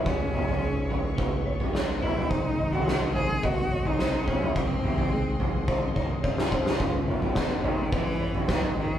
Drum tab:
SD |------------o---|----o-------o---|-------------o-o|----o-------o---|
T2 |--o-----o-----oo|--------o-----oo|--o-------------|--o---o-----o---|
FT |o--o--o-o--o----|o--o--o-o--o----|o--o--o---------|o--o--o-o--o-o--|
BD |o-------o-------|o-------o-----o-|o-------o-o-o-o-|o---o---o---o---|